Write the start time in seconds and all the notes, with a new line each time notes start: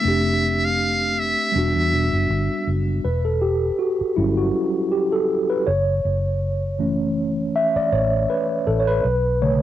Already playing: E5
0.01 F1 A3 C4
0.06 D4 G4
0.65 F5
1.19 E5
1.52 E1 G3 B3
1.56 D4 F#4
1.76 E2
1.93 E1
2.13 F#1
2.30 G1
2.67 F#1
3.05 E1 B4
3.25 A4
3.42 G4
3.79 F#4
4.01 muted fingered electric bass stroke
4.16 G1 F#3 G3 C#4 E4
4.37 F#4
4.92 G4
5.12 A4
5.50 B4
5.67 F#1 C#5
6.05 F#1
6.79 E3 A3 C#4
7.56 E5
7.76 D5, muted fingered electric bass stroke
7.93 A1 C#5
8.30 B4
8.67 A1 A4
8.80 C#5
8.88 B4
9.05 B1
9.41 C#3 D3 A3 C#5